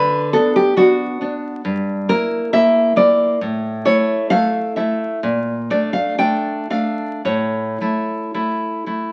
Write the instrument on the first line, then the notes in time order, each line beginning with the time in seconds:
nylon-string guitar
Already playing: D3 B4
0.33 B3 D4 A4
0.56 G4
0.77 B3 D4 F#4
1.21 B3 D4
1.65 G2
2.09 A#3 E4 A#4
2.53 A#3 E4 E5
2.96 A#3 E4 D5
3.41 A2
3.85 A3 E4 C#5
4.30 A3 E4 F5
4.76 A3 E4 E5
5.23 A#2
5.70 A3 D4 D5
5.93 F5
6.18 A3 D4 G5
6.70 A3 D4 F5
7.25 A2 C#5
7.81 A3 E4
8.34 A3 E4
8.86 A3 E4